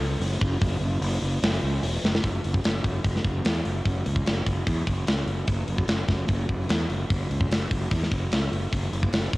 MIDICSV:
0, 0, Header, 1, 3, 480
1, 0, Start_track
1, 0, Tempo, 405405
1, 727, Time_signature, 4, 2, 24, 8
1, 11102, End_track
2, 0, Start_track
2, 0, Title_t, "Fingered electric bass"
2, 0, Program_c, 0, 33
2, 0, Note_on_c, 0, 37, 102
2, 182, Note_off_c, 0, 37, 0
2, 236, Note_on_c, 0, 30, 105
2, 424, Note_off_c, 0, 30, 0
2, 491, Note_on_c, 0, 30, 82
2, 673, Note_off_c, 0, 30, 0
2, 727, Note_on_c, 0, 30, 84
2, 910, Note_off_c, 0, 30, 0
2, 953, Note_on_c, 0, 30, 96
2, 1142, Note_off_c, 0, 30, 0
2, 1197, Note_on_c, 0, 30, 93
2, 1384, Note_off_c, 0, 30, 0
2, 1439, Note_on_c, 0, 30, 86
2, 1625, Note_off_c, 0, 30, 0
2, 1687, Note_on_c, 0, 30, 96
2, 1870, Note_off_c, 0, 30, 0
2, 1926, Note_on_c, 0, 37, 99
2, 2109, Note_off_c, 0, 37, 0
2, 2166, Note_on_c, 0, 28, 99
2, 2349, Note_off_c, 0, 28, 0
2, 2412, Note_on_c, 0, 30, 92
2, 2592, Note_off_c, 0, 30, 0
2, 2650, Note_on_c, 0, 30, 76
2, 2830, Note_off_c, 0, 30, 0
2, 2896, Note_on_c, 0, 30, 83
2, 3074, Note_off_c, 0, 30, 0
2, 3134, Note_on_c, 0, 30, 86
2, 3312, Note_off_c, 0, 30, 0
2, 3366, Note_on_c, 0, 30, 69
2, 3547, Note_off_c, 0, 30, 0
2, 3606, Note_on_c, 0, 30, 75
2, 3788, Note_off_c, 0, 30, 0
2, 3841, Note_on_c, 0, 30, 90
2, 4024, Note_off_c, 0, 30, 0
2, 4088, Note_on_c, 0, 40, 76
2, 4269, Note_off_c, 0, 40, 0
2, 4330, Note_on_c, 0, 30, 74
2, 4510, Note_off_c, 0, 30, 0
2, 4566, Note_on_c, 0, 30, 75
2, 4748, Note_off_c, 0, 30, 0
2, 4810, Note_on_c, 0, 37, 85
2, 4991, Note_off_c, 0, 37, 0
2, 5048, Note_on_c, 0, 30, 86
2, 5230, Note_off_c, 0, 30, 0
2, 5287, Note_on_c, 0, 30, 73
2, 5469, Note_off_c, 0, 30, 0
2, 5530, Note_on_c, 0, 40, 85
2, 5711, Note_off_c, 0, 40, 0
2, 5769, Note_on_c, 0, 30, 92
2, 5951, Note_off_c, 0, 30, 0
2, 6006, Note_on_c, 0, 37, 70
2, 6188, Note_off_c, 0, 37, 0
2, 6235, Note_on_c, 0, 30, 78
2, 6422, Note_off_c, 0, 30, 0
2, 6488, Note_on_c, 0, 30, 74
2, 6670, Note_off_c, 0, 30, 0
2, 6728, Note_on_c, 0, 30, 83
2, 6910, Note_off_c, 0, 30, 0
2, 6962, Note_on_c, 0, 30, 78
2, 7146, Note_off_c, 0, 30, 0
2, 7201, Note_on_c, 0, 30, 75
2, 7386, Note_off_c, 0, 30, 0
2, 7448, Note_on_c, 0, 30, 80
2, 7630, Note_off_c, 0, 30, 0
2, 7687, Note_on_c, 0, 30, 85
2, 7869, Note_off_c, 0, 30, 0
2, 7930, Note_on_c, 0, 40, 83
2, 8111, Note_off_c, 0, 40, 0
2, 8163, Note_on_c, 0, 30, 72
2, 8347, Note_off_c, 0, 30, 0
2, 8407, Note_on_c, 0, 30, 75
2, 8589, Note_off_c, 0, 30, 0
2, 8642, Note_on_c, 0, 37, 73
2, 8827, Note_off_c, 0, 37, 0
2, 8876, Note_on_c, 0, 30, 81
2, 9063, Note_off_c, 0, 30, 0
2, 9130, Note_on_c, 0, 30, 78
2, 9312, Note_off_c, 0, 30, 0
2, 9370, Note_on_c, 0, 40, 89
2, 9552, Note_off_c, 0, 40, 0
2, 9611, Note_on_c, 0, 30, 84
2, 9792, Note_off_c, 0, 30, 0
2, 9846, Note_on_c, 0, 37, 78
2, 10029, Note_off_c, 0, 37, 0
2, 10084, Note_on_c, 0, 30, 81
2, 10268, Note_off_c, 0, 30, 0
2, 10331, Note_on_c, 0, 30, 77
2, 10513, Note_off_c, 0, 30, 0
2, 10567, Note_on_c, 0, 30, 76
2, 10750, Note_off_c, 0, 30, 0
2, 10809, Note_on_c, 0, 30, 88
2, 10992, Note_off_c, 0, 30, 0
2, 11050, Note_on_c, 0, 30, 75
2, 11102, Note_off_c, 0, 30, 0
2, 11102, End_track
3, 0, Start_track
3, 0, Title_t, "Drums"
3, 254, Note_on_c, 9, 46, 61
3, 373, Note_off_c, 9, 46, 0
3, 490, Note_on_c, 9, 36, 91
3, 609, Note_off_c, 9, 36, 0
3, 724, Note_on_c, 9, 46, 65
3, 730, Note_on_c, 9, 36, 108
3, 843, Note_off_c, 9, 46, 0
3, 849, Note_off_c, 9, 36, 0
3, 1212, Note_on_c, 9, 46, 75
3, 1330, Note_off_c, 9, 46, 0
3, 1688, Note_on_c, 9, 46, 75
3, 1701, Note_on_c, 9, 38, 115
3, 1806, Note_off_c, 9, 46, 0
3, 1819, Note_off_c, 9, 38, 0
3, 2168, Note_on_c, 9, 46, 73
3, 2287, Note_off_c, 9, 46, 0
3, 2425, Note_on_c, 9, 38, 66
3, 2543, Note_off_c, 9, 38, 0
3, 2544, Note_on_c, 9, 38, 89
3, 2649, Note_on_c, 9, 36, 86
3, 2650, Note_on_c, 9, 46, 61
3, 2662, Note_off_c, 9, 38, 0
3, 2767, Note_off_c, 9, 36, 0
3, 2768, Note_off_c, 9, 46, 0
3, 2891, Note_on_c, 9, 46, 47
3, 3009, Note_off_c, 9, 46, 0
3, 3009, Note_on_c, 9, 36, 76
3, 3127, Note_off_c, 9, 36, 0
3, 3127, Note_on_c, 9, 46, 54
3, 3140, Note_on_c, 9, 38, 91
3, 3245, Note_off_c, 9, 46, 0
3, 3258, Note_off_c, 9, 38, 0
3, 3365, Note_on_c, 9, 36, 91
3, 3366, Note_on_c, 9, 46, 56
3, 3484, Note_off_c, 9, 36, 0
3, 3484, Note_off_c, 9, 46, 0
3, 3606, Note_on_c, 9, 36, 100
3, 3607, Note_on_c, 9, 46, 62
3, 3724, Note_off_c, 9, 36, 0
3, 3725, Note_off_c, 9, 46, 0
3, 3743, Note_on_c, 9, 38, 29
3, 3843, Note_on_c, 9, 36, 72
3, 3845, Note_on_c, 9, 46, 40
3, 3861, Note_off_c, 9, 38, 0
3, 3962, Note_off_c, 9, 36, 0
3, 3963, Note_off_c, 9, 46, 0
3, 4084, Note_on_c, 9, 46, 69
3, 4097, Note_on_c, 9, 38, 94
3, 4202, Note_off_c, 9, 46, 0
3, 4215, Note_off_c, 9, 38, 0
3, 4324, Note_on_c, 9, 46, 50
3, 4442, Note_off_c, 9, 46, 0
3, 4565, Note_on_c, 9, 36, 94
3, 4565, Note_on_c, 9, 46, 66
3, 4683, Note_off_c, 9, 36, 0
3, 4683, Note_off_c, 9, 46, 0
3, 4808, Note_on_c, 9, 46, 59
3, 4925, Note_on_c, 9, 36, 74
3, 4927, Note_off_c, 9, 46, 0
3, 5043, Note_off_c, 9, 36, 0
3, 5049, Note_on_c, 9, 46, 60
3, 5062, Note_on_c, 9, 38, 92
3, 5167, Note_off_c, 9, 46, 0
3, 5180, Note_off_c, 9, 38, 0
3, 5287, Note_on_c, 9, 36, 89
3, 5288, Note_on_c, 9, 46, 55
3, 5405, Note_off_c, 9, 36, 0
3, 5406, Note_off_c, 9, 46, 0
3, 5527, Note_on_c, 9, 36, 106
3, 5531, Note_on_c, 9, 46, 66
3, 5646, Note_off_c, 9, 36, 0
3, 5649, Note_off_c, 9, 46, 0
3, 5765, Note_on_c, 9, 46, 53
3, 5766, Note_on_c, 9, 36, 75
3, 5883, Note_off_c, 9, 46, 0
3, 5885, Note_off_c, 9, 36, 0
3, 6005, Note_on_c, 9, 46, 63
3, 6018, Note_on_c, 9, 38, 95
3, 6124, Note_off_c, 9, 46, 0
3, 6137, Note_off_c, 9, 38, 0
3, 6247, Note_on_c, 9, 46, 49
3, 6366, Note_off_c, 9, 46, 0
3, 6482, Note_on_c, 9, 46, 66
3, 6486, Note_on_c, 9, 36, 95
3, 6600, Note_off_c, 9, 46, 0
3, 6604, Note_off_c, 9, 36, 0
3, 6723, Note_on_c, 9, 46, 53
3, 6841, Note_off_c, 9, 46, 0
3, 6846, Note_on_c, 9, 36, 73
3, 6960, Note_on_c, 9, 46, 61
3, 6965, Note_off_c, 9, 36, 0
3, 6973, Note_on_c, 9, 38, 102
3, 7078, Note_off_c, 9, 46, 0
3, 7091, Note_off_c, 9, 38, 0
3, 7199, Note_on_c, 9, 46, 55
3, 7204, Note_on_c, 9, 36, 89
3, 7212, Note_on_c, 9, 38, 34
3, 7318, Note_off_c, 9, 46, 0
3, 7323, Note_off_c, 9, 36, 0
3, 7331, Note_off_c, 9, 38, 0
3, 7439, Note_on_c, 9, 46, 66
3, 7445, Note_on_c, 9, 36, 99
3, 7558, Note_off_c, 9, 46, 0
3, 7564, Note_off_c, 9, 36, 0
3, 7686, Note_on_c, 9, 36, 75
3, 7687, Note_on_c, 9, 46, 39
3, 7804, Note_off_c, 9, 36, 0
3, 7805, Note_off_c, 9, 46, 0
3, 7925, Note_on_c, 9, 46, 65
3, 7938, Note_on_c, 9, 38, 89
3, 8044, Note_off_c, 9, 46, 0
3, 8057, Note_off_c, 9, 38, 0
3, 8167, Note_on_c, 9, 46, 46
3, 8286, Note_off_c, 9, 46, 0
3, 8410, Note_on_c, 9, 36, 101
3, 8410, Note_on_c, 9, 46, 62
3, 8529, Note_off_c, 9, 36, 0
3, 8529, Note_off_c, 9, 46, 0
3, 8655, Note_on_c, 9, 46, 51
3, 8771, Note_on_c, 9, 36, 71
3, 8774, Note_off_c, 9, 46, 0
3, 8889, Note_off_c, 9, 36, 0
3, 8898, Note_on_c, 9, 46, 66
3, 8911, Note_on_c, 9, 38, 92
3, 9016, Note_off_c, 9, 46, 0
3, 9029, Note_off_c, 9, 38, 0
3, 9131, Note_on_c, 9, 36, 89
3, 9132, Note_on_c, 9, 46, 61
3, 9249, Note_off_c, 9, 36, 0
3, 9251, Note_off_c, 9, 46, 0
3, 9370, Note_on_c, 9, 36, 102
3, 9370, Note_on_c, 9, 46, 77
3, 9488, Note_off_c, 9, 46, 0
3, 9489, Note_off_c, 9, 36, 0
3, 9507, Note_on_c, 9, 38, 24
3, 9610, Note_on_c, 9, 36, 73
3, 9610, Note_on_c, 9, 46, 52
3, 9626, Note_off_c, 9, 38, 0
3, 9728, Note_off_c, 9, 36, 0
3, 9729, Note_off_c, 9, 46, 0
3, 9847, Note_on_c, 9, 46, 70
3, 9860, Note_on_c, 9, 38, 105
3, 9966, Note_off_c, 9, 46, 0
3, 9979, Note_off_c, 9, 38, 0
3, 10098, Note_on_c, 9, 46, 51
3, 10216, Note_off_c, 9, 46, 0
3, 10332, Note_on_c, 9, 36, 98
3, 10335, Note_on_c, 9, 46, 76
3, 10450, Note_off_c, 9, 36, 0
3, 10453, Note_off_c, 9, 46, 0
3, 10577, Note_on_c, 9, 46, 52
3, 10691, Note_on_c, 9, 36, 74
3, 10695, Note_off_c, 9, 46, 0
3, 10806, Note_on_c, 9, 46, 67
3, 10810, Note_off_c, 9, 36, 0
3, 10819, Note_on_c, 9, 38, 97
3, 10925, Note_off_c, 9, 46, 0
3, 10938, Note_off_c, 9, 38, 0
3, 11049, Note_on_c, 9, 46, 58
3, 11050, Note_on_c, 9, 36, 89
3, 11102, Note_off_c, 9, 36, 0
3, 11102, Note_off_c, 9, 46, 0
3, 11102, End_track
0, 0, End_of_file